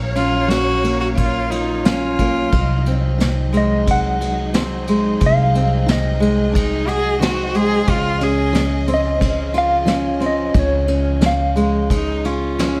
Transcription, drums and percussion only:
0, 0, Header, 1, 2, 480
1, 0, Start_track
1, 0, Tempo, 671141
1, 1807, Time_signature, 4, 2, 24, 8
1, 9155, End_track
2, 0, Start_track
2, 0, Title_t, "Drums"
2, 115, Note_on_c, 9, 51, 54
2, 186, Note_off_c, 9, 51, 0
2, 359, Note_on_c, 9, 51, 68
2, 365, Note_on_c, 9, 38, 94
2, 431, Note_off_c, 9, 51, 0
2, 436, Note_off_c, 9, 38, 0
2, 603, Note_on_c, 9, 51, 52
2, 675, Note_off_c, 9, 51, 0
2, 841, Note_on_c, 9, 36, 77
2, 841, Note_on_c, 9, 51, 69
2, 912, Note_off_c, 9, 36, 0
2, 913, Note_off_c, 9, 51, 0
2, 1084, Note_on_c, 9, 51, 55
2, 1155, Note_off_c, 9, 51, 0
2, 1323, Note_on_c, 9, 51, 74
2, 1329, Note_on_c, 9, 38, 95
2, 1395, Note_off_c, 9, 51, 0
2, 1400, Note_off_c, 9, 38, 0
2, 1565, Note_on_c, 9, 51, 57
2, 1566, Note_on_c, 9, 36, 67
2, 1636, Note_off_c, 9, 51, 0
2, 1638, Note_off_c, 9, 36, 0
2, 1805, Note_on_c, 9, 51, 62
2, 1806, Note_on_c, 9, 36, 85
2, 1876, Note_off_c, 9, 51, 0
2, 1878, Note_off_c, 9, 36, 0
2, 2046, Note_on_c, 9, 51, 53
2, 2117, Note_off_c, 9, 51, 0
2, 2289, Note_on_c, 9, 51, 64
2, 2295, Note_on_c, 9, 38, 89
2, 2361, Note_off_c, 9, 51, 0
2, 2366, Note_off_c, 9, 38, 0
2, 2528, Note_on_c, 9, 51, 49
2, 2599, Note_off_c, 9, 51, 0
2, 2770, Note_on_c, 9, 51, 66
2, 2771, Note_on_c, 9, 36, 72
2, 2841, Note_off_c, 9, 51, 0
2, 2843, Note_off_c, 9, 36, 0
2, 3013, Note_on_c, 9, 51, 49
2, 3085, Note_off_c, 9, 51, 0
2, 3245, Note_on_c, 9, 51, 68
2, 3251, Note_on_c, 9, 38, 93
2, 3317, Note_off_c, 9, 51, 0
2, 3322, Note_off_c, 9, 38, 0
2, 3486, Note_on_c, 9, 51, 52
2, 3557, Note_off_c, 9, 51, 0
2, 3724, Note_on_c, 9, 51, 61
2, 3728, Note_on_c, 9, 36, 80
2, 3795, Note_off_c, 9, 51, 0
2, 3799, Note_off_c, 9, 36, 0
2, 3970, Note_on_c, 9, 51, 50
2, 4042, Note_off_c, 9, 51, 0
2, 4206, Note_on_c, 9, 51, 72
2, 4212, Note_on_c, 9, 38, 82
2, 4278, Note_off_c, 9, 51, 0
2, 4283, Note_off_c, 9, 38, 0
2, 4448, Note_on_c, 9, 51, 51
2, 4520, Note_off_c, 9, 51, 0
2, 4686, Note_on_c, 9, 36, 82
2, 4689, Note_on_c, 9, 51, 69
2, 4758, Note_off_c, 9, 36, 0
2, 4761, Note_off_c, 9, 51, 0
2, 4924, Note_on_c, 9, 51, 56
2, 4995, Note_off_c, 9, 51, 0
2, 5164, Note_on_c, 9, 51, 77
2, 5170, Note_on_c, 9, 38, 97
2, 5236, Note_off_c, 9, 51, 0
2, 5241, Note_off_c, 9, 38, 0
2, 5397, Note_on_c, 9, 51, 52
2, 5468, Note_off_c, 9, 51, 0
2, 5633, Note_on_c, 9, 51, 73
2, 5634, Note_on_c, 9, 36, 96
2, 5704, Note_off_c, 9, 51, 0
2, 5706, Note_off_c, 9, 36, 0
2, 5871, Note_on_c, 9, 51, 53
2, 5942, Note_off_c, 9, 51, 0
2, 6110, Note_on_c, 9, 51, 68
2, 6116, Note_on_c, 9, 38, 92
2, 6182, Note_off_c, 9, 51, 0
2, 6188, Note_off_c, 9, 38, 0
2, 6348, Note_on_c, 9, 51, 56
2, 6420, Note_off_c, 9, 51, 0
2, 6588, Note_on_c, 9, 36, 75
2, 6591, Note_on_c, 9, 51, 70
2, 6659, Note_off_c, 9, 36, 0
2, 6662, Note_off_c, 9, 51, 0
2, 6824, Note_on_c, 9, 51, 51
2, 6895, Note_off_c, 9, 51, 0
2, 7060, Note_on_c, 9, 51, 64
2, 7066, Note_on_c, 9, 38, 96
2, 7131, Note_off_c, 9, 51, 0
2, 7137, Note_off_c, 9, 38, 0
2, 7303, Note_on_c, 9, 51, 50
2, 7375, Note_off_c, 9, 51, 0
2, 7541, Note_on_c, 9, 36, 88
2, 7541, Note_on_c, 9, 51, 58
2, 7612, Note_off_c, 9, 51, 0
2, 7613, Note_off_c, 9, 36, 0
2, 7780, Note_on_c, 9, 51, 50
2, 7852, Note_off_c, 9, 51, 0
2, 8019, Note_on_c, 9, 51, 63
2, 8025, Note_on_c, 9, 38, 91
2, 8091, Note_off_c, 9, 51, 0
2, 8096, Note_off_c, 9, 38, 0
2, 8270, Note_on_c, 9, 51, 55
2, 8342, Note_off_c, 9, 51, 0
2, 8512, Note_on_c, 9, 36, 74
2, 8515, Note_on_c, 9, 51, 77
2, 8583, Note_off_c, 9, 36, 0
2, 8586, Note_off_c, 9, 51, 0
2, 8758, Note_on_c, 9, 51, 53
2, 8829, Note_off_c, 9, 51, 0
2, 9005, Note_on_c, 9, 51, 72
2, 9011, Note_on_c, 9, 38, 96
2, 9077, Note_off_c, 9, 51, 0
2, 9082, Note_off_c, 9, 38, 0
2, 9155, End_track
0, 0, End_of_file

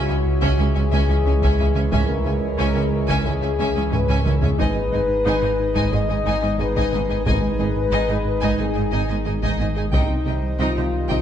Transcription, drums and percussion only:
0, 0, Header, 1, 2, 480
1, 0, Start_track
1, 0, Tempo, 666667
1, 1385, Time_signature, 4, 2, 24, 8
1, 8076, End_track
2, 0, Start_track
2, 0, Title_t, "Taiko and cinematic ensemble drums"
2, 308, Note_on_c, 9, 41, 73
2, 380, Note_off_c, 9, 41, 0
2, 1029, Note_on_c, 9, 41, 76
2, 1101, Note_off_c, 9, 41, 0
2, 1384, Note_on_c, 9, 41, 103
2, 1456, Note_off_c, 9, 41, 0
2, 2227, Note_on_c, 9, 41, 75
2, 2299, Note_off_c, 9, 41, 0
2, 2827, Note_on_c, 9, 45, 92
2, 2899, Note_off_c, 9, 45, 0
2, 2947, Note_on_c, 9, 45, 78
2, 3019, Note_off_c, 9, 45, 0
2, 3067, Note_on_c, 9, 45, 97
2, 3139, Note_off_c, 9, 45, 0
2, 3184, Note_on_c, 9, 43, 96
2, 3256, Note_off_c, 9, 43, 0
2, 3306, Note_on_c, 9, 41, 93
2, 3378, Note_off_c, 9, 41, 0
2, 4145, Note_on_c, 9, 41, 79
2, 4217, Note_off_c, 9, 41, 0
2, 4869, Note_on_c, 9, 41, 79
2, 4941, Note_off_c, 9, 41, 0
2, 5231, Note_on_c, 9, 41, 105
2, 5303, Note_off_c, 9, 41, 0
2, 6070, Note_on_c, 9, 41, 72
2, 6142, Note_off_c, 9, 41, 0
2, 6789, Note_on_c, 9, 41, 77
2, 6861, Note_off_c, 9, 41, 0
2, 7148, Note_on_c, 9, 41, 89
2, 7220, Note_off_c, 9, 41, 0
2, 7988, Note_on_c, 9, 41, 69
2, 8060, Note_off_c, 9, 41, 0
2, 8076, End_track
0, 0, End_of_file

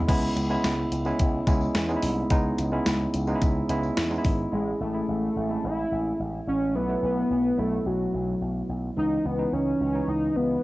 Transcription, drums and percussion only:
0, 0, Header, 1, 2, 480
1, 0, Start_track
1, 0, Tempo, 555556
1, 71, Time_signature, 4, 2, 24, 8
1, 9188, End_track
2, 0, Start_track
2, 0, Title_t, "Drums"
2, 72, Note_on_c, 9, 54, 41
2, 74, Note_on_c, 9, 36, 96
2, 76, Note_on_c, 9, 42, 81
2, 76, Note_on_c, 9, 49, 89
2, 158, Note_off_c, 9, 54, 0
2, 160, Note_off_c, 9, 36, 0
2, 162, Note_off_c, 9, 42, 0
2, 162, Note_off_c, 9, 49, 0
2, 310, Note_on_c, 9, 54, 50
2, 317, Note_on_c, 9, 42, 73
2, 397, Note_off_c, 9, 54, 0
2, 403, Note_off_c, 9, 42, 0
2, 431, Note_on_c, 9, 54, 33
2, 517, Note_off_c, 9, 54, 0
2, 554, Note_on_c, 9, 54, 82
2, 555, Note_on_c, 9, 38, 109
2, 555, Note_on_c, 9, 42, 84
2, 640, Note_off_c, 9, 54, 0
2, 641, Note_off_c, 9, 38, 0
2, 641, Note_off_c, 9, 42, 0
2, 792, Note_on_c, 9, 54, 47
2, 794, Note_on_c, 9, 42, 69
2, 878, Note_off_c, 9, 54, 0
2, 880, Note_off_c, 9, 42, 0
2, 906, Note_on_c, 9, 54, 30
2, 993, Note_off_c, 9, 54, 0
2, 1028, Note_on_c, 9, 54, 50
2, 1032, Note_on_c, 9, 42, 91
2, 1034, Note_on_c, 9, 36, 84
2, 1115, Note_off_c, 9, 54, 0
2, 1118, Note_off_c, 9, 42, 0
2, 1120, Note_off_c, 9, 36, 0
2, 1271, Note_on_c, 9, 36, 89
2, 1271, Note_on_c, 9, 42, 72
2, 1273, Note_on_c, 9, 54, 51
2, 1357, Note_off_c, 9, 36, 0
2, 1357, Note_off_c, 9, 42, 0
2, 1359, Note_off_c, 9, 54, 0
2, 1390, Note_on_c, 9, 54, 28
2, 1476, Note_off_c, 9, 54, 0
2, 1510, Note_on_c, 9, 42, 97
2, 1511, Note_on_c, 9, 38, 95
2, 1511, Note_on_c, 9, 54, 81
2, 1596, Note_off_c, 9, 42, 0
2, 1597, Note_off_c, 9, 38, 0
2, 1598, Note_off_c, 9, 54, 0
2, 1632, Note_on_c, 9, 54, 33
2, 1718, Note_off_c, 9, 54, 0
2, 1748, Note_on_c, 9, 54, 42
2, 1749, Note_on_c, 9, 46, 77
2, 1834, Note_off_c, 9, 54, 0
2, 1835, Note_off_c, 9, 46, 0
2, 1989, Note_on_c, 9, 42, 83
2, 1990, Note_on_c, 9, 54, 41
2, 1991, Note_on_c, 9, 36, 96
2, 2076, Note_off_c, 9, 42, 0
2, 2077, Note_off_c, 9, 54, 0
2, 2078, Note_off_c, 9, 36, 0
2, 2231, Note_on_c, 9, 54, 46
2, 2233, Note_on_c, 9, 42, 70
2, 2318, Note_off_c, 9, 54, 0
2, 2320, Note_off_c, 9, 42, 0
2, 2472, Note_on_c, 9, 38, 110
2, 2472, Note_on_c, 9, 42, 80
2, 2475, Note_on_c, 9, 54, 87
2, 2558, Note_off_c, 9, 38, 0
2, 2558, Note_off_c, 9, 42, 0
2, 2562, Note_off_c, 9, 54, 0
2, 2711, Note_on_c, 9, 42, 71
2, 2715, Note_on_c, 9, 54, 46
2, 2797, Note_off_c, 9, 42, 0
2, 2801, Note_off_c, 9, 54, 0
2, 2827, Note_on_c, 9, 54, 29
2, 2913, Note_off_c, 9, 54, 0
2, 2950, Note_on_c, 9, 54, 48
2, 2951, Note_on_c, 9, 42, 83
2, 2953, Note_on_c, 9, 36, 82
2, 3036, Note_off_c, 9, 54, 0
2, 3038, Note_off_c, 9, 42, 0
2, 3039, Note_off_c, 9, 36, 0
2, 3191, Note_on_c, 9, 42, 72
2, 3193, Note_on_c, 9, 54, 47
2, 3277, Note_off_c, 9, 42, 0
2, 3279, Note_off_c, 9, 54, 0
2, 3310, Note_on_c, 9, 54, 28
2, 3397, Note_off_c, 9, 54, 0
2, 3431, Note_on_c, 9, 42, 95
2, 3431, Note_on_c, 9, 54, 81
2, 3432, Note_on_c, 9, 38, 98
2, 3517, Note_off_c, 9, 42, 0
2, 3518, Note_off_c, 9, 38, 0
2, 3518, Note_off_c, 9, 54, 0
2, 3550, Note_on_c, 9, 54, 32
2, 3637, Note_off_c, 9, 54, 0
2, 3665, Note_on_c, 9, 54, 42
2, 3669, Note_on_c, 9, 46, 77
2, 3670, Note_on_c, 9, 36, 90
2, 3752, Note_off_c, 9, 54, 0
2, 3755, Note_off_c, 9, 46, 0
2, 3756, Note_off_c, 9, 36, 0
2, 9188, End_track
0, 0, End_of_file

